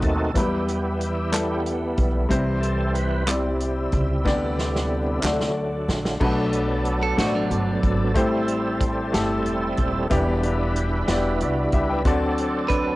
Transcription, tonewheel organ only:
0.00 0.31 D#3 soft
0.00 0.31 A3 soft
0.00 0.32 C4 medium
0.00 0.32 D#4 medium
0.00 0.31 F#4 medium
0.00 0.36 A4 medium
0.36 2.27 E3 soft
0.36 2.28 G3 soft
0.36 2.28 B3 soft
0.36 1.63 E4 soft
0.36 1.62 G4 medium
2.29 3.24 E3 soft
2.29 3.24 G3 soft
2.29 3.24 C4 soft
2.61 2.96 A4 medium
2.95 3.29 B4 medium
3.28 5.52 C3 medium
3.28 4.25 G3 medium
3.28 5.52 E4 medium
4.26 5.20 D3 soft
4.26 5.20 G3 soft
4.26 5.21 B3 soft
5.24 6.18 D3 soft
5.24 6.18 F#3 soft
5.24 6.18 A3 medium
6.20 8.12 F#3 medium
6.20 8.12 B3 medium
6.20 8.12 D4 medium
6.20 6.27 G#4 medium
6.27 8.15 A4 medium
8.17 10.07 G3 medium
8.17 10.08 C4 medium
8.17 10.08 E4 medium
8.17 10.08 A4 medium
10.11 12.03 G3 medium
10.11 12.02 D4 medium
10.11 12.02 E4 medium
10.11 12.03 B4 medium
12.06 12.96 F#3 medium
12.06 12.96 C4 medium
12.06 12.96 D4 medium
12.06 12.96 A4 medium

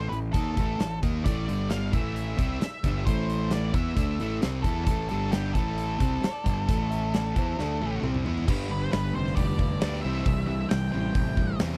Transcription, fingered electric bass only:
0.11 0.33 A1 medium
0.34 0.56 D#2 medium
0.58 0.79 A1 medium
0.80 1.02 A1 medium
1.02 1.24 D#2 medium
1.25 1.47 A1 medium
1.49 1.91 G1 medium
1.93 2.36 A1 medium
2.39 2.60 C2 medium
2.63 muted fingered electric bass stroke soft
2.84 3.05 G1 medium
3.07 3.71 A1 medium
3.74 3.95 E2 medium
3.97 4.18 D2 medium
4.21 4.42 A1 medium
4.44 4.64 C2 medium
4.65 4.86 E2 medium
4.86 5.08 A1 medium
5.12 5.53 G1 medium
5.55 5.97 A1 medium
6.01 6.22 C2 medium
6.23 muted fingered electric bass stroke soft
6.46 6.67 G1 medium
6.69 7.32 A1 medium
7.36 7.57 E2 medium
7.59 7.79 D2 medium
7.82 8.02 A1 medium
8.03 8.24 C2 medium
8.26 8.47 E2 medium
8.48 8.85 G1 medium
8.93 9.12 G1 medium
9.17 9.35 F1 medium
9.37 9.75 F1 medium
9.83 10.01 D2 medium
10.05 10.23 C2 medium
10.26 10.64 C2 loud
10.72 10.91 C2 medium
10.94 11.13 A1 medium
11.15 11.53 A1 medium
11.61 11.77 E2 medium

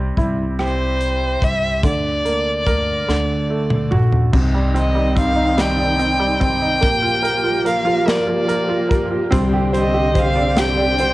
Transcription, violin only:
0.62 1.45 C5 medium
1.44 1.84 E5 medium
1.86 3.89 D5 medium
4.77 5.15 D#5 medium
5.19 5.62 F5 medium
5.60 6.42 G5 medium
6.43 7.63 G5 loud
7.68 8.11 F5 medium
8.10 9.02 D5 medium
9.79 10.21 D#5 medium
10.19 10.61 F5 medium
10.60 11.14 G5 medium

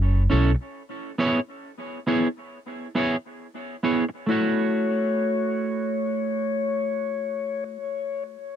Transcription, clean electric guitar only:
0.30 0.50 C#4 medium
0.30 0.50 E4 medium
0.30 0.51 A4 medium
0.30 0.51 C#5 medium
1.18 1.38 B3 loud
1.18 1.39 E4 loud
1.18 1.39 G#4 medium
1.18 1.39 C#5 loud
2.07 2.27 B3 medium
2.07 2.27 E4 medium
2.07 2.27 G#4 medium
2.07 2.27 C#5 medium
2.95 3.15 B3 medium
2.95 3.15 E4 medium
2.95 3.16 G#4 loud
2.95 3.16 C#5 medium
3.83 4.03 B3 medium
3.83 4.04 E4 medium
3.83 4.04 G#4 medium
3.83 4.04 C#5 medium
4.09 muted clean electric guitar stroke soft
4.26 7.76 A3 medium
4.26 7.79 E4 medium
4.26 7.80 F#4 medium
4.31 7.81 C#5 medium

